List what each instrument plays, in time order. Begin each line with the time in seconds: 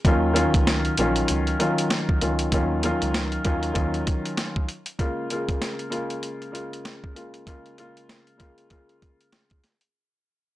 0.05 tine electric piano D#2, grand piano D#3 F#3 C#4 F4, kick, closed hi-hat
0.34 grand piano D#3 F#3 C#4 F4, closed hi-hat
0.54 tine electric piano C#2, kick, closed hi-hat
0.67 snare, closed hi-hat
0.85 closed hi-hat
0.97 tine electric piano A#1, grand piano D#3 F#3 C#4 F4, closed hi-hat
1.16 closed hi-hat
1.28 tine electric piano C#2, closed hi-hat
1.47 closed hi-hat
1.59 grand piano D#3 F#3 C#4 F4, closed hi-hat
1.78 closed hi-hat
1.90 snare, closed hi-hat
2.09 kick
2.21 tine electric piano C#2, grand piano D#3 F#3 C#4 F4, closed hi-hat
2.39 closed hi-hat
2.52 tine electric piano D#2, grand piano D#3 F#3 C#4 F4, kick, closed hi-hat
2.83 grand piano D#3 F#3 C#4 F4, closed hi-hat
3.02 tine electric piano C#2, closed hi-hat
3.14 snare, closed hi-hat
3.32 closed hi-hat
3.44 tine electric piano D#2, grand piano D#3 F#3 C#4 F4, kick, closed hi-hat
3.63 closed hi-hat
3.74 tine electric piano D#2, grand piano D#3 F#3 C#4 F4, kick, closed hi-hat
3.94 closed hi-hat
4.07 kick, closed hi-hat
4.25 closed hi-hat
4.37 snare, closed hi-hat
4.56 kick
4.69 closed hi-hat
4.86 closed hi-hat
4.99 grand piano C#3 G#3 A#3 F4, kick, closed hi-hat
5.30 grand piano C#3 G#3 A#3 F4, closed hi-hat
5.49 kick, closed hi-hat
5.62 snare, closed hi-hat
5.79 closed hi-hat
5.90 grand piano C#3 G#3 A#3 F4, closed hi-hat
6.10 closed hi-hat
6.23 closed hi-hat
6.42 closed hi-hat
6.52 grand piano C#3 G#3 A#3 F4, closed hi-hat
6.73 closed hi-hat
6.85 snare, closed hi-hat
7.04 kick
7.15 grand piano C#3 G#3 A#3 F4, closed hi-hat
7.34 closed hi-hat
7.47 grand piano C#3 G#3 A#3 F4, kick, closed hi-hat
7.66 closed hi-hat
7.78 grand piano C#3 G#3 A#3 F4, closed hi-hat
7.97 closed hi-hat
8.09 snare, closed hi-hat
8.27 closed hi-hat
8.38 grand piano C#3 G#3 A#3 F4, kick, closed hi-hat
8.58 closed hi-hat
8.70 grand piano C#3 G#3 A#3 F4, kick, closed hi-hat
8.89 closed hi-hat
9.02 kick, closed hi-hat
9.21 closed hi-hat
9.32 snare, closed hi-hat
9.50 kick, closed hi-hat
9.64 snare, closed hi-hat
9.81 closed hi-hat